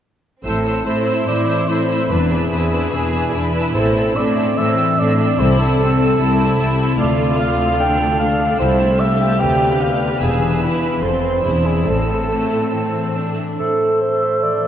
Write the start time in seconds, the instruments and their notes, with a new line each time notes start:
0.44 double bass section A1, cello section A2, harp A2, violin section C4 E6, viola section E4 C5, cor anglais A4
0.65 harp C4, viola section E4 C5, violin section E6
0.85 cello section A2, viola section E4 C5, violin section E4 E6, harp A4, cor anglais C5
1.06 viola section E4 C5, harp E5, violin section E6
1.26 cello section A2, harp E3, viola section E4 C5, cor anglais D5, violin section E6
1.47 harp C4, viola section E4 C5, violin section E6
1.68 cello section A2, viola section E4 C5, harp A4, cor anglais C5, violin section E6
1.89 viola section E4 C5, harp E5, violin section E6
2.09 double bass section E1, cello section E2, harp E2, viola section D4 B4, violin section D4 E6, cor anglais B4
2.30 harp D4, viola section D4 B4, cor anglais G#4, violin section E6
2.50 cello section E2, viola section D4 B4, violin section E4 E6, harp B4
2.71 viola section D4 B4, harp E5, violin section E6
2.91 cello section E2, harp B2, viola section D4 B4, violin section G#4 E6
3.12 harp D4, viola section D4 B4, violin section E6
3.33 cello section E2, viola section D4 B4, violin section E4 E6, harp B4
3.53 viola section D4 B4, harp E5, violin section E6
3.73 double bass section A1, cello section A2, harp A2, viola section C4 A4, cor anglais C5, violin section E6
3.95 harp C4, viola section C4 A4, violin section E6
4.15 cello section A2, viola section C4 A4, violin section D4 E6, harp A4, cor anglais D5
4.36 viola section C4 A4, harp E5, violin section E6
4.56 cello section A2, harp E3, viola section C4 A4, violin section C4 E6, cor anglais E5
4.77 harp C4, viola section C4 A4, violin section E6
4.98 cello section A2, viola section C4 A4, violin section D4 E6, harp A4, cor anglais D5
5.19 viola section C4 A4, harp E5, violin section E6
5.38 cello section C2, double bass section C2, harp C3, viola section C4 A4, violin section E4 E6, cor anglais C5
5.59 harp C4, viola section C4 A4, cor anglais A4, violin section E6
5.79 cello section C2, viola section C4 A4, violin section C4 E6, harp A4
5.99 viola section C4 A4, harp E5, violin section E6
6.19 cello section C2, harp C3, viola section C4 A4, violin section E4 E6
6.39 viola section C4 A4, harp C4, violin section E6
6.59 cello section C2, viola section C4 A4, harp A4, violin section E6
6.79 viola section C4 A4, harp E5, violin section E6
6.99 cello section D2, double bass section D2, harp D3, viola section A3 A4, violin section F4 F6, cor anglais D5
7.20 harp A3
7.39 harp A4, cor anglais F5
7.60 harp F5
7.79 violin section D4, harp D4, cor anglais G5
8.00 harp A3
8.19 violin section D4, harp A4, cor anglais F5
8.41 harp F5
8.59 cello section C2, double bass section C2, harp C3, violin section E4 E6, cor anglais C5
8.80 harp A3
8.99 violin section G4, harp A4, cor anglais E5
9.21 harp E5
9.40 cello section D2, double bass section D2, harp D3, viola section D4 B4, cor anglais G5, violin section F6
9.61 harp B3
9.81 harp D5, cor anglais F5
10.01 harp F5
10.21 double bass section E1, cello section E2, harp E3, cor anglais G#4, violin section G#4 E6
10.42 harp E4
10.62 violin section E4, cor anglais B4, harp B4
11.03 double bass section F1, cello section F2, harp F3, violin section C4 C6, viola section C4 A4, cor anglais C5
11.24 harp C4 C5
11.44 double bass section E1, cello section E2, harp E3, viola section D4 G#4, violin section E4 E6
11.65 harp E4 D5, cor anglais G#4
11.86 double bass section A1, cello section A2, harp A2, viola section C4 A4, violin section C4, cor anglais A4
12.09 harp A3
12.30 violin section A3, harp C5
12.52 harp E5
12.74 harp E3, violin section C4
12.95 harp A3
13.16 violin section D4, harp C5
13.38 harp E5
13.59 harp A2, bassoon A3, clarinet A4, cor anglais C5, flute E6
13.81 harp A3
14.01 harp C5, clarinet C5
14.22 harp E5
14.43 harp E3, clarinet D5
14.64 harp A3